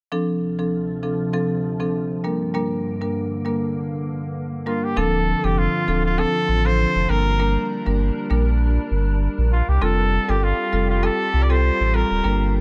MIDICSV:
0, 0, Header, 1, 5, 480
1, 0, Start_track
1, 0, Key_signature, -2, "minor"
1, 0, Tempo, 606061
1, 96, Time_signature, 4, 2, 24, 8
1, 9985, End_track
2, 0, Start_track
2, 0, Title_t, "Trumpet"
2, 0, Program_c, 0, 56
2, 3700, Note_on_c, 0, 65, 76
2, 3833, Note_on_c, 0, 67, 87
2, 3845, Note_off_c, 0, 65, 0
2, 3941, Note_on_c, 0, 69, 103
2, 3953, Note_off_c, 0, 67, 0
2, 4313, Note_on_c, 0, 67, 90
2, 4325, Note_off_c, 0, 69, 0
2, 4422, Note_on_c, 0, 65, 91
2, 4434, Note_off_c, 0, 67, 0
2, 4788, Note_off_c, 0, 65, 0
2, 4793, Note_on_c, 0, 65, 92
2, 4902, Note_on_c, 0, 69, 106
2, 4913, Note_off_c, 0, 65, 0
2, 5273, Note_on_c, 0, 72, 115
2, 5285, Note_off_c, 0, 69, 0
2, 5622, Note_on_c, 0, 70, 98
2, 5634, Note_off_c, 0, 72, 0
2, 6099, Note_off_c, 0, 70, 0
2, 7541, Note_on_c, 0, 65, 80
2, 7674, Note_on_c, 0, 67, 88
2, 7686, Note_off_c, 0, 65, 0
2, 7783, Note_on_c, 0, 69, 107
2, 7794, Note_off_c, 0, 67, 0
2, 8154, Note_on_c, 0, 67, 92
2, 8166, Note_off_c, 0, 69, 0
2, 8262, Note_on_c, 0, 65, 93
2, 8274, Note_off_c, 0, 67, 0
2, 8629, Note_off_c, 0, 65, 0
2, 8634, Note_on_c, 0, 65, 93
2, 8743, Note_on_c, 0, 69, 108
2, 8755, Note_off_c, 0, 65, 0
2, 9052, Note_on_c, 0, 74, 83
2, 9063, Note_off_c, 0, 69, 0
2, 9114, Note_on_c, 0, 72, 115
2, 9126, Note_off_c, 0, 74, 0
2, 9462, Note_on_c, 0, 70, 105
2, 9474, Note_off_c, 0, 72, 0
2, 9939, Note_off_c, 0, 70, 0
2, 9985, End_track
3, 0, Start_track
3, 0, Title_t, "Marimba"
3, 0, Program_c, 1, 12
3, 93, Note_on_c, 1, 53, 91
3, 94, Note_on_c, 1, 60, 81
3, 96, Note_on_c, 1, 62, 83
3, 97, Note_on_c, 1, 69, 97
3, 434, Note_off_c, 1, 53, 0
3, 435, Note_off_c, 1, 60, 0
3, 436, Note_off_c, 1, 62, 0
3, 437, Note_off_c, 1, 69, 0
3, 465, Note_on_c, 1, 53, 67
3, 467, Note_on_c, 1, 60, 62
3, 468, Note_on_c, 1, 62, 65
3, 470, Note_on_c, 1, 69, 75
3, 576, Note_off_c, 1, 53, 0
3, 577, Note_off_c, 1, 60, 0
3, 578, Note_off_c, 1, 62, 0
3, 578, Note_off_c, 1, 69, 0
3, 813, Note_on_c, 1, 53, 74
3, 815, Note_on_c, 1, 60, 67
3, 816, Note_on_c, 1, 62, 67
3, 818, Note_on_c, 1, 69, 81
3, 948, Note_off_c, 1, 53, 0
3, 948, Note_off_c, 1, 60, 0
3, 949, Note_off_c, 1, 62, 0
3, 950, Note_off_c, 1, 69, 0
3, 1054, Note_on_c, 1, 53, 86
3, 1055, Note_on_c, 1, 60, 79
3, 1056, Note_on_c, 1, 62, 78
3, 1058, Note_on_c, 1, 69, 98
3, 1395, Note_off_c, 1, 53, 0
3, 1396, Note_off_c, 1, 60, 0
3, 1396, Note_off_c, 1, 62, 0
3, 1397, Note_off_c, 1, 69, 0
3, 1425, Note_on_c, 1, 53, 72
3, 1426, Note_on_c, 1, 60, 70
3, 1428, Note_on_c, 1, 62, 68
3, 1429, Note_on_c, 1, 69, 81
3, 1536, Note_off_c, 1, 53, 0
3, 1537, Note_off_c, 1, 60, 0
3, 1537, Note_off_c, 1, 62, 0
3, 1538, Note_off_c, 1, 69, 0
3, 1773, Note_on_c, 1, 55, 75
3, 1775, Note_on_c, 1, 58, 68
3, 1776, Note_on_c, 1, 62, 69
3, 1778, Note_on_c, 1, 70, 81
3, 1908, Note_off_c, 1, 55, 0
3, 1909, Note_off_c, 1, 58, 0
3, 1909, Note_off_c, 1, 62, 0
3, 1910, Note_off_c, 1, 70, 0
3, 2013, Note_on_c, 1, 55, 93
3, 2014, Note_on_c, 1, 58, 82
3, 2016, Note_on_c, 1, 62, 79
3, 2017, Note_on_c, 1, 70, 95
3, 2355, Note_off_c, 1, 55, 0
3, 2355, Note_off_c, 1, 58, 0
3, 2356, Note_off_c, 1, 62, 0
3, 2357, Note_off_c, 1, 70, 0
3, 2385, Note_on_c, 1, 55, 70
3, 2387, Note_on_c, 1, 58, 61
3, 2388, Note_on_c, 1, 62, 62
3, 2390, Note_on_c, 1, 70, 76
3, 2496, Note_off_c, 1, 55, 0
3, 2497, Note_off_c, 1, 58, 0
3, 2497, Note_off_c, 1, 62, 0
3, 2498, Note_off_c, 1, 70, 0
3, 2733, Note_on_c, 1, 55, 74
3, 2734, Note_on_c, 1, 58, 68
3, 2736, Note_on_c, 1, 62, 68
3, 2738, Note_on_c, 1, 70, 82
3, 2868, Note_off_c, 1, 55, 0
3, 2868, Note_off_c, 1, 58, 0
3, 2869, Note_off_c, 1, 62, 0
3, 2870, Note_off_c, 1, 70, 0
3, 3693, Note_on_c, 1, 55, 78
3, 3694, Note_on_c, 1, 58, 69
3, 3696, Note_on_c, 1, 62, 68
3, 3698, Note_on_c, 1, 70, 84
3, 3827, Note_off_c, 1, 55, 0
3, 3828, Note_off_c, 1, 58, 0
3, 3829, Note_off_c, 1, 62, 0
3, 3830, Note_off_c, 1, 70, 0
3, 3932, Note_on_c, 1, 53, 94
3, 3934, Note_on_c, 1, 60, 85
3, 3936, Note_on_c, 1, 62, 86
3, 3937, Note_on_c, 1, 69, 105
3, 4274, Note_off_c, 1, 53, 0
3, 4275, Note_off_c, 1, 60, 0
3, 4276, Note_off_c, 1, 62, 0
3, 4277, Note_off_c, 1, 69, 0
3, 4305, Note_on_c, 1, 53, 73
3, 4306, Note_on_c, 1, 60, 67
3, 4308, Note_on_c, 1, 62, 67
3, 4309, Note_on_c, 1, 69, 83
3, 4416, Note_off_c, 1, 53, 0
3, 4417, Note_off_c, 1, 60, 0
3, 4417, Note_off_c, 1, 62, 0
3, 4418, Note_off_c, 1, 69, 0
3, 4653, Note_on_c, 1, 53, 76
3, 4654, Note_on_c, 1, 60, 71
3, 4656, Note_on_c, 1, 62, 74
3, 4658, Note_on_c, 1, 69, 87
3, 4788, Note_off_c, 1, 53, 0
3, 4788, Note_off_c, 1, 60, 0
3, 4789, Note_off_c, 1, 62, 0
3, 4790, Note_off_c, 1, 69, 0
3, 4893, Note_on_c, 1, 53, 93
3, 4894, Note_on_c, 1, 60, 85
3, 4896, Note_on_c, 1, 62, 88
3, 4898, Note_on_c, 1, 69, 106
3, 5235, Note_off_c, 1, 53, 0
3, 5235, Note_off_c, 1, 60, 0
3, 5236, Note_off_c, 1, 62, 0
3, 5237, Note_off_c, 1, 69, 0
3, 5266, Note_on_c, 1, 53, 77
3, 5267, Note_on_c, 1, 60, 70
3, 5269, Note_on_c, 1, 62, 75
3, 5270, Note_on_c, 1, 69, 89
3, 5376, Note_off_c, 1, 53, 0
3, 5377, Note_off_c, 1, 60, 0
3, 5378, Note_off_c, 1, 62, 0
3, 5378, Note_off_c, 1, 69, 0
3, 5614, Note_on_c, 1, 55, 84
3, 5615, Note_on_c, 1, 58, 74
3, 5617, Note_on_c, 1, 62, 72
3, 5619, Note_on_c, 1, 70, 90
3, 5748, Note_off_c, 1, 55, 0
3, 5749, Note_off_c, 1, 58, 0
3, 5750, Note_off_c, 1, 62, 0
3, 5750, Note_off_c, 1, 70, 0
3, 5853, Note_on_c, 1, 55, 96
3, 5855, Note_on_c, 1, 58, 84
3, 5856, Note_on_c, 1, 62, 84
3, 5858, Note_on_c, 1, 70, 106
3, 6195, Note_off_c, 1, 55, 0
3, 6196, Note_off_c, 1, 58, 0
3, 6196, Note_off_c, 1, 62, 0
3, 6197, Note_off_c, 1, 70, 0
3, 6225, Note_on_c, 1, 55, 76
3, 6227, Note_on_c, 1, 58, 68
3, 6228, Note_on_c, 1, 62, 67
3, 6230, Note_on_c, 1, 70, 80
3, 6336, Note_off_c, 1, 55, 0
3, 6337, Note_off_c, 1, 58, 0
3, 6338, Note_off_c, 1, 62, 0
3, 6338, Note_off_c, 1, 70, 0
3, 6574, Note_on_c, 1, 55, 79
3, 6575, Note_on_c, 1, 58, 76
3, 6577, Note_on_c, 1, 62, 74
3, 6578, Note_on_c, 1, 70, 87
3, 6708, Note_off_c, 1, 55, 0
3, 6709, Note_off_c, 1, 58, 0
3, 6710, Note_off_c, 1, 62, 0
3, 6710, Note_off_c, 1, 70, 0
3, 7773, Note_on_c, 1, 55, 96
3, 7774, Note_on_c, 1, 60, 86
3, 7776, Note_on_c, 1, 65, 88
3, 7778, Note_on_c, 1, 69, 103
3, 8115, Note_off_c, 1, 55, 0
3, 8115, Note_off_c, 1, 60, 0
3, 8116, Note_off_c, 1, 65, 0
3, 8117, Note_off_c, 1, 69, 0
3, 8145, Note_on_c, 1, 55, 76
3, 8147, Note_on_c, 1, 60, 69
3, 8149, Note_on_c, 1, 65, 72
3, 8150, Note_on_c, 1, 69, 86
3, 8256, Note_off_c, 1, 55, 0
3, 8257, Note_off_c, 1, 60, 0
3, 8258, Note_off_c, 1, 65, 0
3, 8259, Note_off_c, 1, 69, 0
3, 8493, Note_on_c, 1, 55, 79
3, 8495, Note_on_c, 1, 60, 71
3, 8497, Note_on_c, 1, 65, 73
3, 8498, Note_on_c, 1, 69, 88
3, 8628, Note_off_c, 1, 55, 0
3, 8629, Note_off_c, 1, 60, 0
3, 8630, Note_off_c, 1, 65, 0
3, 8630, Note_off_c, 1, 69, 0
3, 8733, Note_on_c, 1, 55, 101
3, 8735, Note_on_c, 1, 60, 91
3, 8737, Note_on_c, 1, 65, 86
3, 8738, Note_on_c, 1, 69, 106
3, 9075, Note_off_c, 1, 55, 0
3, 9076, Note_off_c, 1, 60, 0
3, 9077, Note_off_c, 1, 65, 0
3, 9077, Note_off_c, 1, 69, 0
3, 9105, Note_on_c, 1, 55, 80
3, 9106, Note_on_c, 1, 60, 76
3, 9108, Note_on_c, 1, 65, 75
3, 9110, Note_on_c, 1, 69, 90
3, 9216, Note_off_c, 1, 55, 0
3, 9217, Note_off_c, 1, 60, 0
3, 9218, Note_off_c, 1, 65, 0
3, 9218, Note_off_c, 1, 69, 0
3, 9453, Note_on_c, 1, 55, 81
3, 9454, Note_on_c, 1, 60, 74
3, 9456, Note_on_c, 1, 65, 75
3, 9457, Note_on_c, 1, 69, 89
3, 9587, Note_off_c, 1, 55, 0
3, 9588, Note_off_c, 1, 60, 0
3, 9589, Note_off_c, 1, 65, 0
3, 9590, Note_off_c, 1, 69, 0
3, 9692, Note_on_c, 1, 55, 97
3, 9694, Note_on_c, 1, 58, 89
3, 9695, Note_on_c, 1, 62, 85
3, 9697, Note_on_c, 1, 70, 107
3, 9985, Note_off_c, 1, 55, 0
3, 9985, Note_off_c, 1, 58, 0
3, 9985, Note_off_c, 1, 62, 0
3, 9985, Note_off_c, 1, 70, 0
3, 9985, End_track
4, 0, Start_track
4, 0, Title_t, "Ambient pad"
4, 0, Program_c, 2, 92
4, 95, Note_on_c, 2, 38, 86
4, 95, Note_on_c, 2, 48, 77
4, 95, Note_on_c, 2, 53, 92
4, 1759, Note_off_c, 2, 38, 0
4, 1759, Note_off_c, 2, 48, 0
4, 1759, Note_off_c, 2, 53, 0
4, 1775, Note_on_c, 2, 43, 82
4, 1775, Note_on_c, 2, 50, 72
4, 1775, Note_on_c, 2, 58, 88
4, 3914, Note_off_c, 2, 43, 0
4, 3914, Note_off_c, 2, 50, 0
4, 3914, Note_off_c, 2, 58, 0
4, 3935, Note_on_c, 2, 50, 90
4, 3935, Note_on_c, 2, 65, 98
4, 3936, Note_on_c, 2, 60, 79
4, 5599, Note_off_c, 2, 50, 0
4, 5599, Note_off_c, 2, 60, 0
4, 5599, Note_off_c, 2, 65, 0
4, 5614, Note_on_c, 2, 62, 79
4, 5615, Note_on_c, 2, 55, 88
4, 5615, Note_on_c, 2, 70, 97
4, 7753, Note_off_c, 2, 62, 0
4, 7754, Note_off_c, 2, 55, 0
4, 7754, Note_off_c, 2, 70, 0
4, 7777, Note_on_c, 2, 55, 90
4, 7777, Note_on_c, 2, 65, 82
4, 7777, Note_on_c, 2, 67, 96
4, 9677, Note_off_c, 2, 55, 0
4, 9677, Note_off_c, 2, 65, 0
4, 9677, Note_off_c, 2, 67, 0
4, 9695, Note_on_c, 2, 70, 99
4, 9696, Note_on_c, 2, 55, 86
4, 9696, Note_on_c, 2, 62, 78
4, 9985, Note_off_c, 2, 55, 0
4, 9985, Note_off_c, 2, 62, 0
4, 9985, Note_off_c, 2, 70, 0
4, 9985, End_track
5, 0, Start_track
5, 0, Title_t, "Sub bass"
5, 0, Program_c, 3, 38
5, 3935, Note_on_c, 3, 26, 106
5, 4229, Note_off_c, 3, 26, 0
5, 4306, Note_on_c, 3, 29, 83
5, 4497, Note_off_c, 3, 29, 0
5, 4655, Note_on_c, 3, 26, 91
5, 4949, Note_off_c, 3, 26, 0
5, 5135, Note_on_c, 3, 33, 88
5, 5430, Note_off_c, 3, 33, 0
5, 5507, Note_on_c, 3, 29, 93
5, 5593, Note_off_c, 3, 29, 0
5, 5615, Note_on_c, 3, 31, 112
5, 5995, Note_off_c, 3, 31, 0
5, 6227, Note_on_c, 3, 31, 95
5, 6417, Note_off_c, 3, 31, 0
5, 6575, Note_on_c, 3, 34, 95
5, 6955, Note_off_c, 3, 34, 0
5, 7056, Note_on_c, 3, 31, 93
5, 7350, Note_off_c, 3, 31, 0
5, 7428, Note_on_c, 3, 34, 88
5, 7618, Note_off_c, 3, 34, 0
5, 7668, Note_on_c, 3, 36, 87
5, 7753, Note_off_c, 3, 36, 0
5, 7776, Note_on_c, 3, 29, 113
5, 8070, Note_off_c, 3, 29, 0
5, 8148, Note_on_c, 3, 31, 99
5, 8338, Note_off_c, 3, 31, 0
5, 8496, Note_on_c, 3, 29, 104
5, 8790, Note_off_c, 3, 29, 0
5, 8976, Note_on_c, 3, 36, 95
5, 9270, Note_off_c, 3, 36, 0
5, 9348, Note_on_c, 3, 33, 99
5, 9538, Note_off_c, 3, 33, 0
5, 9588, Note_on_c, 3, 26, 93
5, 9673, Note_off_c, 3, 26, 0
5, 9696, Note_on_c, 3, 31, 109
5, 9985, Note_off_c, 3, 31, 0
5, 9985, End_track
0, 0, End_of_file